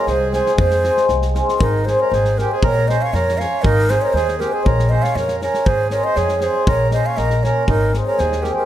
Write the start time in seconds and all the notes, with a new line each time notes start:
Already playing: G#3
0.07 C2 G#4 C5, snare
0.32 G#3 C4 F4 G#4 C5, snare
0.46 snare
0.57 F2 G#4 C5, kick
0.71 snare
0.84 G#3 C4 F4 G#4 C5, snare
0.97 snare
1.09 C2, snare
1.22 snare
1.34 G#3 C4 F4 G#4 C5, snare
1.49 snare
1.59 G#1 D#4 A#4, kick
1.85 C4 D#4 G#4 C5, snare
2.00 A#4 C#5
2.11 G#1 G#4 C5, snare
2.25 snare
2.35 C4 D#4 G#4 A#4 C5, snare
2.41 G4
2.51 G#4 C5
2.62 A#1 A#4 C#5, kick
2.86 C#4 F4 A#4 C#5 D#5, snare
2.90 C5
3.02 C#5 F5
3.13 F2 A#4 C#5, snare
3.29 snare
3.36 C#4 F4 A#4 C#5 F5, snare
3.62 G#1 D#4 A#4, kick
3.89 C4 D#4 G#4 C5, snare
4.02 A#4 C#5
4.13 D#2 G#4 C5, snare
4.28 snare
4.39 C4 D#4 G4 G#4 A#4 C5, snare
4.53 G#4 C5
4.63 A#1 A#4 C#5, kick
4.79 snare
4.89 C#4 F4 A#4 C5 C#5 D#5
5.02 C#5 F5, snare
5.15 F2 A#4 C#5, snare
5.28 snare
5.40 C#4 F4 A#4 C#5, snare
5.54 snare
5.66 G#1 G#4 C5, kick
5.90 C4 D#4 G#4 A#4 C5 C#5, snare
6.04 C5 D#5
6.16 F2 G#4 C#5, snare
6.29 snare
6.40 C4 D#4 G#4 C5, snare
6.67 A#1 A#4 C#5, kick
6.90 A#3 C#4 F4 A#4 D#5, snare
6.94 C5
7.06 C#5 F5
7.17 A#1 A#4 D#5, snare
7.30 snare
7.42 A#3 C#4 F4 A#4 C#5, snare
7.68 G#1 D#4 A#4, kick
7.92 G#3 C4 D#4 G#4, snare
8.05 A#4 C#5
8.18 D#2 G#4 C5, snare
8.32 snare
8.41 G#3 C4 D#4 G4 G#4 A#4, snare
8.54 G4 A#4